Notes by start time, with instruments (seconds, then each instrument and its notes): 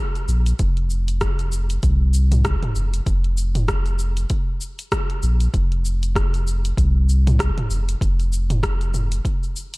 0.15 closed hi-hat, shaker
0.28 sub bass A#1, shaker
0.46 closed hi-hat, shaker
0.59 sub bass F1, kick, closed hi-hat, shaker
0.77 closed hi-hat
0.90 shaker
1.08 closed hi-hat, shaker
1.21 kick, cross-stick, closed hi-hat, shaker
1.39 closed hi-hat, shaker
1.52 shaker
1.70 closed hi-hat, shaker
1.83 sub bass C2, kick, closed hi-hat, shaker
2.14 shaker
2.32 closed hi-hat, mid tom, shaker
2.45 kick, cross-stick, closed hi-hat, shaker
2.63 closed hi-hat, mid tom
2.75 sub bass F1, shaker
2.94 closed hi-hat, shaker
3.06 sub bass F1, kick, closed hi-hat, shaker
3.24 closed hi-hat
3.37 shaker
3.55 closed hi-hat, mid tom, shaker
3.68 kick, cross-stick, closed hi-hat, shaker
3.86 closed hi-hat, shaker
3.99 shaker
4.17 closed hi-hat, shaker
4.30 kick, closed hi-hat, shaker
4.61 shaker
4.79 closed hi-hat, shaker
4.92 kick, cross-stick, closed hi-hat, shaker
5.10 closed hi-hat
5.23 sub bass A#1, shaker
5.40 closed hi-hat, shaker
5.54 sub bass F1, kick, closed hi-hat, shaker
5.72 closed hi-hat
5.85 shaker
6.03 closed hi-hat, shaker
6.16 kick, cross-stick, closed hi-hat, shaker
6.34 closed hi-hat, shaker
6.47 shaker
6.65 closed hi-hat, shaker
6.77 sub bass C2, kick, closed hi-hat, shaker
7.09 shaker
7.27 closed hi-hat, mid tom, shaker
7.39 kick, cross-stick, closed hi-hat, shaker
7.58 closed hi-hat, mid tom
7.70 sub bass F1, shaker
7.89 closed hi-hat, shaker
8.01 sub bass F1, kick, closed hi-hat, shaker
8.20 closed hi-hat, shaker
8.33 shaker
8.50 closed hi-hat, mid tom, shaker
8.63 kick, cross-stick, closed hi-hat, shaker
8.81 closed hi-hat, shaker
8.94 mid tom, shaker
9.12 closed hi-hat, shaker
9.25 kick, closed hi-hat, shaker
9.43 shaker
9.56 shaker
9.74 closed hi-hat, shaker